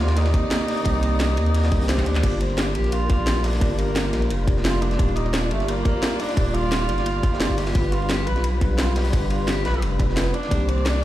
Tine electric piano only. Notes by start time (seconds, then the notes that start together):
Already playing: D#3 A#3 C4 D4 G4
0.31 D#3 A#3 C4
0.35 G4 D5
0.83 D#3 A#3 C4
0.87 G4 D5
1.79 D#3 A#3 C4 D4 G4
1.88 D#3 A#3 C4 D4 G4
2.21 A#3 D4 F4
2.25 G4 D5
3.07 A#3 D4 F4
3.11 G4 D5
3.58 A#3 D4 F4
3.63 G4 D5
4.45 A#3 D4 F4
4.49 G4 D5
4.96 A#3 D#4 F4
5.01 G4 D5
5.83 A#3 D#4 F4
5.87 G4 D5
6.34 A#3 D#4 F4
6.38 G4 D5
7.31 A#3 D#4 F4 G4 D5
7.39 A#3 D#4 F4 G4 D5
7.72 G3 B3 D4
7.76 F4 B4
8.58 G3 B3 D4
8.63 F4 B4
9.10 G3 B3 D4
9.15 F4 B4
9.98 G3 B3 D4 F4 B4
10.48 D#3 A#3 C4
10.53 D4 G4